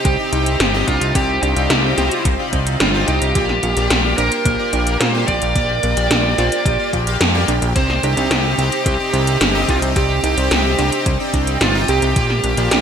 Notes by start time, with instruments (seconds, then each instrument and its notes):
Already playing: analog synth pad C3 C4 D#4 G4, analog polysynth C4 D#4 G4 C5
0.05 analog synth bass C2, synth arpeggio sound G4, lead electric guitar G4, kick, closed hi-hat
0.19 analog polysynth C4 D#4 G4 D5
0.32 analog synth bass C2, synth arpeggio sound D#4, closed hi-hat
0.46 closed hi-hat
0.60 analog synth bass G1, snare, closed hi-hat
0.74 analog polysynth C4 D#4 G4 D#5
0.88 analog synth bass C2, synth arpeggio sound D4, lead electric guitar F4, kick, closed hi-hat
1.01 analog synth bass C2, closed hi-hat
1.15 analog synth bass C2, synth arpeggio sound C4, analog polysynth C4 D#4 G4 D5, analog synth pad F4, lead electric guitar G4, kick, closed hi-hat
1.42 analog synth bass C2, synth arpeggio sound D4, lead electric guitar G4, closed hi-hat
1.56 analog synth bass C2, analog polysynth C4 D#4 G4 D5, closed hi-hat
1.70 analog synth bass C2, synth arpeggio sound D#4, snare, closed hi-hat
1.98 analog synth bass C2, analog polysynth C4 D#4 G4 C5, synth arpeggio sound G4, snare, closed hi-hat
2.11 closed hi-hat
2.25 analog synth bass C2, kick, closed hi-hat
2.39 analog polysynth C4 D#4 G4 D5
2.53 analog synth bass C2, synth arpeggio sound C4, kick, closed hi-hat
2.67 closed hi-hat
2.80 analog synth bass G1, synth arpeggio sound D4, lead electric guitar F4, snare, closed hi-hat
2.94 analog polysynth C4 D#4 G4 D#5
3.08 analog synth bass C2, synth arpeggio sound D#4, lead electric guitar G4, closed hi-hat
3.22 analog synth bass C2, closed hi-hat
3.35 analog synth bass A#1, analog synth pad A#3 G4, analog polysynth A#3 F4 G4 D5, synth arpeggio sound G4, kick, closed hi-hat
3.49 snare
3.63 analog synth bass A#1, synth arpeggio sound F4, closed hi-hat
3.77 analog synth bass A#1, analog polysynth A#3 F4 G4 D5, closed hi-hat
3.90 analog synth bass A#1, snare, closed hi-hat
4.17 analog synth bass A#1, analog polysynth A#3 F4 G4 C5, synth arpeggio sound D4, lead electric guitar A#4, closed hi-hat
4.32 closed hi-hat
4.45 analog synth bass A#1, synth arpeggio sound A#3, kick, closed hi-hat
4.59 analog polysynth A#3 F4 G4 D5
4.73 analog synth bass A#1, synth arpeggio sound D4, closed hi-hat
4.87 closed hi-hat
5.00 analog synth bass A#2, synth arpeggio sound F4, lead electric guitar C5, snare, closed hi-hat
5.14 analog polysynth A#3 F4 G4 F5
5.28 analog synth bass A#1, synth arpeggio sound G4, lead electric guitar D5, kick, closed hi-hat
5.42 analog synth bass A#1, closed hi-hat
5.56 analog synth bass A#1, analog polysynth A#3 F4 G4 D5, kick, closed hi-hat
5.83 analog synth bass A#1, synth arpeggio sound A#3, closed hi-hat
5.97 analog synth bass A#1, analog polysynth A#3 F4 G4 D5, closed hi-hat
6.11 analog synth bass A#1, synth arpeggio sound D4, snare, closed hi-hat
6.38 analog synth bass A#1, analog polysynth A#3 F4 G4 C5, synth arpeggio sound F4, snare, closed hi-hat
6.52 closed hi-hat
6.66 analog synth bass A#1, synth arpeggio sound G4, kick, closed hi-hat
6.79 analog polysynth A#3 F4 G4 D5
6.93 analog synth bass A#1, analog polysynth A#3 F4 G4 D5, synth arpeggio sound F4, kick, closed hi-hat
7.07 analog polysynth A#3 F4 G4 F5, closed hi-hat
7.21 analog synth bass F2, snare, closed hi-hat
7.34 analog polysynth A#3 F4 G4 D5
7.48 analog synth bass A#1, synth arpeggio sound D4, closed hi-hat
7.62 analog synth bass A#1, closed hi-hat
7.76 analog synth bass C2, analog synth pad C3 C4 D#4, analog polysynth C4 D#4 G4 D5, synth arpeggio sound C4, lead electric guitar C5, kick, closed hi-hat
7.90 snare
8.03 analog synth bass C2, synth arpeggio sound D4, lead electric guitar G4, closed hi-hat
8.17 analog synth bass C2, analog polysynth C4 D#4 G4 D5, closed hi-hat
8.30 analog synth bass C2, synth arpeggio sound D#4, snare, closed hi-hat
8.58 analog synth bass C2, analog polysynth C4 D#4 G4 C5, synth arpeggio sound G4, closed hi-hat
8.72 closed hi-hat
8.86 analog synth bass C2, lead electric guitar G4, kick, closed hi-hat
9.00 analog polysynth C4 D#4 G4 D5
9.13 analog synth bass C2, synth arpeggio sound C4, closed hi-hat
9.27 closed hi-hat
9.41 analog synth bass G1, synth arpeggio sound D4, snare, closed hi-hat
9.55 analog polysynth C4 D#4 G4 D#5
9.68 analog synth bass C2, synth arpeggio sound D#4, lead electric guitar F4, kick, closed hi-hat
9.82 analog synth bass C2, closed hi-hat
9.96 analog synth bass C2, analog polysynth C4 D#4 G4 D5, synth arpeggio sound G4, lead electric guitar G4, kick, closed hi-hat
10.23 analog synth bass C2, synth arpeggio sound D#4, lead electric guitar G4, closed hi-hat
10.37 analog synth bass C2, analog polysynth C4 D#4 G4 D5, closed hi-hat
10.51 analog synth bass C2, snare, closed hi-hat
10.79 analog synth bass C2, analog polysynth C4 D#4 G4 C5, synth arpeggio sound D4, snare, closed hi-hat
10.92 closed hi-hat
11.06 analog synth bass C2, synth arpeggio sound C4, kick, closed hi-hat
11.20 analog polysynth C4 D#4 G4 D5
11.34 analog synth bass C2, synth arpeggio sound D4, kick, closed hi-hat
11.47 closed hi-hat
11.61 analog synth bass G1, synth arpeggio sound D#4, lead electric guitar F4, snare, closed hi-hat
11.75 analog polysynth C4 D#4 G4 D#5
11.88 analog synth bass C2, synth arpeggio sound G4, lead electric guitar G4, closed hi-hat
12.02 analog synth bass C2, closed hi-hat
12.16 analog synth bass A#1, analog polysynth A#3 F4 G4 D5, analog synth pad A#3 F5, kick, closed hi-hat
12.30 snare
12.44 analog synth bass A#1, synth arpeggio sound A#3, closed hi-hat
12.57 analog synth bass A#1, analog polysynth A#3 F4 G4 D5, closed hi-hat
12.71 analog synth bass A#1, synth arpeggio sound D4, snare, closed hi-hat